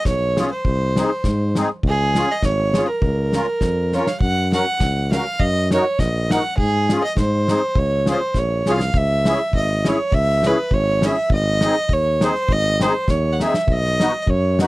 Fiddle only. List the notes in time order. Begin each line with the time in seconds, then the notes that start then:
0.07 C#5
0.52 C5
1.88 G#4
2.32 D#5
2.45 C#5
2.88 A#4
3.94 C#5
4.08 F5
4.20 F#5
4.53 F#5
5.12 F5
5.40 D#5
5.73 C#5
5.99 D#5
6.31 F#5
6.57 G#4
7.03 D#5
7.19 C5
7.78 C#5
8.11 C5
8.38 C#5
8.71 F5
8.97 E5
9.56 D#5
9.88 C#5
10.14 E5
10.46 B4
10.74 C#5
11.06 E5
11.33 D#5
11.93 C#5
12.24 C5
12.52 D#5
12.82 C5
13.10 C#5
13.33 F#5
13.41 E5
13.63 E5
13.72 D#5
14.22 D#5
14.30 C#5
14.63 B4